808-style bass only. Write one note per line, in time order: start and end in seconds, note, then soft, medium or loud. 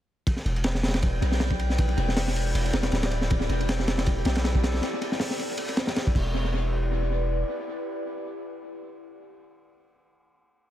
0.45 1.20 E1 loud
1.22 1.96 B1 medium
1.98 2.53 E1 loud
2.54 2.72 E1 medium
2.73 2.91 E1 medium
2.92 3.48 D1 loud
3.49 4.24 E1 loud
4.25 4.81 B1 medium
6.15 7.44 E1 loud